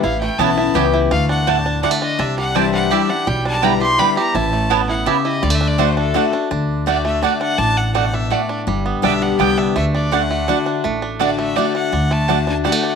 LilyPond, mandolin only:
\new Staff \with { instrumentName = "Mandolin" } { \time 3/4 \key d \mixolydian \tempo 4 = 166 r4 <b e' cis'' a''>16 r8. <b e' cis'' a''>16 r8. | r4 <a fis' d'' fis''>16 r8. <a fis' d'' fis''>16 r8. | r4 <c' e' d'' g''>16 r8. <c' e' d'' g''>16 r8. | r4 <b e' b' g''>16 r8. <b e' b' g''>16 r8. |
r4 <b e' cis'' a''>16 r8. <b e' cis'' a''>16 r8. | r4 <a fis' d'' fis''>16 r8. <a fis' d'' fis''>16 r8. | r4 <a fis' d'' fis''>16 r8. <a fis' d'' fis''>16 r8. | r4 <a fis' d'' fis''>16 r8. <a fis' d'' fis''>16 r8. |
r4 <b g' d'' g''>16 r8. <b g' d'' g''>16 r8. | r4 <a fis' d'' fis''>16 r8. <a fis' d'' fis''>16 r8. | r4 <a fis' d'' fis''>16 r8. <a fis' d'' fis''>16 r8. | r4 <a fis' d'' fis''>16 r8. <a fis' d'' fis''>16 r8. | }